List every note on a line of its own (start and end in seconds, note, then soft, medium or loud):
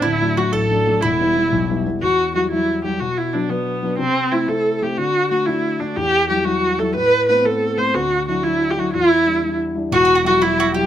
0.02 0.98 D1 medium
0.02 0.36 D2 medium
0.02 0.34 E4 medium
0.02 0.39 E4 loud
0.22 0.36 F#3 soft
0.22 0.37 A3 soft
0.22 0.37 D4 medium
0.37 0.65 F#3 soft
0.37 0.65 A3 soft
0.37 0.65 D4 soft
0.37 0.54 F#4 medium
0.53 0.86 A1 medium
0.53 1.03 A4 loud
0.53 0.99 A4 medium
0.71 0.85 F#3 soft
0.71 0.85 A3 soft
0.71 0.86 D4 medium
0.87 0.99 F#3 medium
0.87 0.99 A3 medium
0.87 1.00 D4 medium
1.02 1.98 E1 medium
1.02 1.36 E2 medium
1.02 1.85 E4 medium
1.02 1.81 E4 medium
1.20 1.35 G3 soft
1.20 1.35 B3 soft
1.20 1.36 E4 medium
1.36 1.63 G3 soft
1.36 1.63 B3 soft
1.36 1.64 E4 medium
1.52 1.84 B1 medium
1.70 1.85 G3 soft
1.70 1.85 B3 soft
1.70 1.86 E4 medium
1.86 1.98 G3 medium
1.86 1.99 B3 soft
1.86 1.99 E4 medium
2.02 2.98 E2 medium
2.02 2.33 F#4 loud
2.34 2.50 F#3 soft
2.34 2.50 G3 soft
2.34 2.50 E4 soft
2.34 2.50 F#4 medium
2.51 2.83 F#3 soft
2.51 2.83 G3 soft
2.51 2.82 E4 medium
2.51 2.84 E4 medium
2.85 3.00 F#3 soft
2.85 3.00 G3 soft
2.85 3.00 E4 medium
2.85 3.02 G4 medium
3.00 3.96 B2 medium
3.00 3.19 F#4 medium
3.18 3.35 E4 medium
3.34 3.48 F#3 soft
3.34 3.48 B3 soft
3.34 3.51 D4 medium
3.34 3.49 D4 medium
3.50 3.81 F#3 soft
3.50 3.82 B3 soft
3.50 3.98 B3 medium
3.50 3.82 D4 medium
3.83 3.98 F#3 soft
3.83 3.98 B3 soft
3.83 3.99 D4 medium
3.98 4.94 C3 medium
3.98 4.33 C4 loud
4.32 4.46 A3 soft
4.32 4.46 C4 soft
4.32 4.50 E4 medium
4.32 4.47 E4 medium
4.47 4.80 A3 medium
4.47 4.81 C4 soft
4.47 4.81 E4 medium
4.47 4.78 A4 medium
4.78 4.97 A3 medium
4.78 4.85 A4 medium
4.83 4.97 C4 soft
4.83 4.98 E4 medium
4.83 4.99 G4 medium
4.98 5.93 D3 medium
4.98 5.30 F#4 loud
5.31 5.46 A3 soft
5.31 5.46 D4 soft
5.31 5.48 F#4 medium
5.31 5.47 F#4 soft
5.47 5.79 A3 medium
5.47 5.80 D4 soft
5.47 5.81 E4 medium
5.47 5.80 F#4 medium
5.80 5.96 A3 medium
5.80 5.98 D4 medium
5.80 5.96 D4 soft
5.80 5.96 F#4 medium
5.96 6.92 E2 medium
5.96 6.29 G4 loud
6.30 6.43 F#3 soft
6.30 6.44 G3 soft
6.30 6.44 E4 soft
6.30 6.46 G4 medium
6.44 6.77 F#3 medium
6.44 6.78 G3 soft
6.44 6.78 E4 medium
6.44 6.81 F#4 loud
6.79 6.94 F#3 soft
6.79 6.94 G3 soft
6.79 6.95 E4 medium
6.79 6.95 A4 medium
6.95 7.91 A2 medium
6.95 7.27 B4 loud
7.29 7.42 A3 soft
7.29 7.43 B3 soft
7.29 7.43 C4 soft
7.29 7.47 B4 medium
7.44 7.76 A3 soft
7.44 7.76 B3 soft
7.44 7.77 C4 medium
7.44 7.79 A4 medium
7.78 7.93 A3 soft
7.78 7.93 B3 soft
7.78 7.94 C4 medium
7.78 7.96 C5 medium
7.94 8.90 D2 medium
7.94 8.28 F#4 loud
8.28 8.42 F#3 medium
8.28 8.42 D4 soft
8.28 8.42 E4 medium
8.28 8.45 F#4 medium
8.43 8.76 F#3 medium
8.43 8.76 D4 soft
8.43 8.72 E4 medium
8.43 8.76 E4 medium
8.70 8.81 G4 medium
8.77 8.93 F#3 medium
8.77 8.93 D4 soft
8.77 8.93 E4 medium
8.77 8.93 F#4 medium
8.93 9.90 E2 medium
8.93 9.57 E4 loud
9.26 9.41 G3 soft
9.26 9.41 D4 soft
9.26 9.42 E4 medium
9.43 9.73 G3 soft
9.43 9.73 D4 soft
9.43 9.74 E4 medium
9.75 9.91 G3 medium
9.75 9.91 D4 soft
9.75 9.91 E4 medium
9.91 10.86 E1 medium
9.91 10.86 E2 medium
9.91 10.03 F#4 medium
9.91 10.24 F#4 loud
10.05 10.14 F#4 medium
10.15 10.25 F#4 medium
10.24 10.39 F#3 medium
10.24 10.39 G3 soft
10.24 10.40 E4 medium
10.24 10.41 F#4 medium
10.24 10.44 F#4 loud
10.40 10.73 F#3 medium
10.40 10.74 G3 soft
10.40 10.74 E4 medium
10.40 10.58 E4 medium
10.40 10.75 E4 loud
10.60 10.74 F#4 medium
10.74 10.86 F#3 medium
10.74 10.86 G3 soft
10.74 10.86 E4 medium
10.74 10.86 G4 medium
10.74 10.86 G4 loud